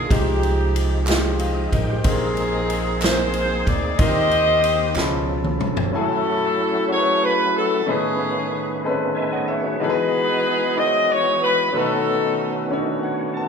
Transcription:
Already playing: C3 D#3 D4 D#4 F4 G#4 A#4 C5 D5
0.09 C2 C3 F3 G#3 D#4 F4 G4, kick, ride
0.13 D#4
0.43 ride
0.76 ride
1.06 G#3 D#4 F4 G4, clap, ride
1.10 snare
1.39 C5 D#5 F5, ride
1.72 A1 A#4 D#5 G5, kick, ride
1.90 G4 C5
2.04 A#1 A#2 A#3 C4 D#4 G4 G#4 A#4, kick, ride
2.12 G#4
2.37 ride
2.70 ride
3.02 C4 D#4 G#4 A#4 C5, snare, clap, ride
3.34 ride
3.66 D2 D5, kick, ride
3.98 D#2 D#3 A#3 C4 D#4 F4 G4 C5 D#5, kick, ride
4.02 G4 A#4
4.07 G4
4.31 ride
4.64 ride
4.95 C#2 B2 C#3 F3 C#4 F4 A4 B5, snare, clap
5.44 mid tom
5.60 F1, mid tom
5.77 floor tom
5.91 F#3 A3 C#4 E4 F#4 G#5
5.95 C#4 E4 A4
6.88 C#4 E4 F#4 G#4 A#4
6.92 C#5
6.98 B4
7.24 B4
7.57 A4
7.86 A2 D#3 A3 B3 C#4 D#4 G#4 B4
8.83 C4 D#4 G#4 A4 B4
8.89 C#4
9.15 A4 B4 D#5 E5 G#5
9.32 A4 C#5 D#5 F#5
9.47 G#4 B4 C#5 E5
9.62 F#4 G#4 B4 C#5
9.80 E3 G#3 B3 D#4 F#4 G#4 A4 B4 D#5
9.90 B4
10.76 D#4 E4 F#4 G#4 C5 D#5
10.85 C#5
11.10 C#5
11.42 B4
11.72 B2 D#3 A3 B3 C#4 D#4 F#4 A4 B4
11.77 C#4 D#4
12.71 C#4 D4 F#4 A4 C#5
12.78 D#4
13.03 C#5 F#5
13.34 A5

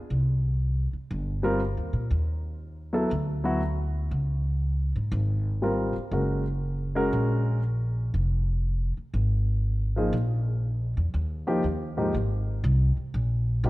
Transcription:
0.10 C2
0.93 muted upright bass stroke
1.11 G1
1.43 G3 C4 F4 A#4
1.77 D#2
1.93 A#2
2.11 D#2
2.93 F#3 B3 E4 A4
3.11 D2
3.44 F#3 B3 E4 F#4
4.11 C#2
4.96 G#2
5.12 G#1
5.62 G3 C4 F4 A#4
5.96 muted upright bass stroke
6.11 F#1 G#3 C#4 F#4 A#4
6.95 G#3 C#4 F#4 A#4
7.13 A#1
8.14 F1
8.97 muted upright bass stroke
9.14 G#1
9.96 F3 A#3 D#4 G#4
10.13 A#1
10.97 E2
11.14 D#2
11.47 F3 A#3 D#4 G4
11.64 D#2
11.97 G#2 F3 A#3 D#4 G4
12.14 G#1
12.64 C2
12.97 muted upright bass stroke
13.14 A#1
13.64 G#1 F3 A#3 D#4 G4

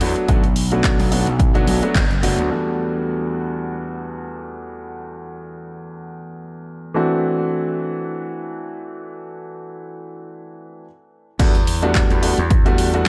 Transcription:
0.01 E2 F#3 A3 B3 D4 F#4, open hi-hat
0.16 closed hi-hat
0.28 B1 F#3 A3 B3 D4 F#4, kick, closed hi-hat
0.44 closed hi-hat
0.56 open hi-hat
0.72 F#3 A3 B3 D4 F#4, closed hi-hat
0.84 kick, clap, closed hi-hat
0.99 B1, open hi-hat
1.11 F#3 A3 B3 D4 F#4, open hi-hat
1.27 B1, closed hi-hat
1.39 kick, closed hi-hat
1.54 F#3 A3 B3 D4 F#4, closed hi-hat
1.67 B1, open hi-hat
1.82 F#3 A3 B3 D4 F#4, muted slap bass stroke, closed hi-hat
1.95 F#1, kick, clap, closed hi-hat
2.11 closed hi-hat
2.23 F#1 F#3 A3 B3 D4 F#4, open hi-hat
2.38 D2, closed hi-hat
2.50 E2 G3 A3 B3 D4 F#4
6.94 E3 A3 C4 D4 F#4
11.39 E2 G3 A3 B3 D4 F#4, kick, closed hi-hat, crash
11.55 closed hi-hat
11.67 open hi-hat
11.82 G3 A3 B3 D4 F#4, closed hi-hat
11.95 kick, clap, closed hi-hat
12.10 E2, closed hi-hat
12.22 G3 A3 B3 D4 F#4, open hi-hat
12.38 E2, closed hi-hat
12.50 kick, closed hi-hat
12.65 G3 A3 B3 D4 F#4, closed hi-hat
12.78 open hi-hat
12.93 G3 A3 B3 D4 F#4, closed hi-hat

